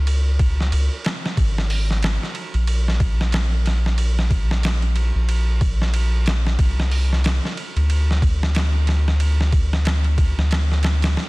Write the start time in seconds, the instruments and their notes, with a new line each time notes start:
Already playing: sub bass C#2
0.07 ride
0.39 kick, ride
0.60 snare
0.72 sub bass C#2, ride
1.05 snare, ride
1.26 snare
1.37 sub bass G#1, kick, ride
1.58 snare
1.70 open hi-hat
1.91 snare
2.03 snare, ride
2.23 snare
2.35 ride
2.54 sub bass A#1, ride
2.67 ride
2.88 snare
3.00 kick, ride
3.21 snare
3.32 snare, ride
3.66 snare, ride
3.86 snare
3.98 ride
4.19 snare
4.30 kick, ride
4.51 snare
4.63 snare, ride
4.82 ride
4.96 ride
5.15 sub bass A#1
5.29 ride
5.61 kick, ride
5.82 snare
5.94 ride
6.26 snare, ride
6.47 snare
6.59 sub bass C2, kick, ride
6.80 snare
6.91 open hi-hat
7.13 snare
7.24 snare, ride
7.45 snare
7.57 ride
7.76 sub bass D2, ride
7.90 ride
8.11 snare
8.22 kick, ride
8.43 snare
8.55 snare, ride
8.87 snare, ride
9.08 snare
9.20 ride
9.41 snare
9.52 kick, ride
9.73 snare
9.85 snare, ride
10.04 ride
10.18 kick, ride
10.37 sub bass D2, snare
10.51 snare, ride
10.72 snare
10.83 snare, ride
11.02 snare, ride
11.17 snare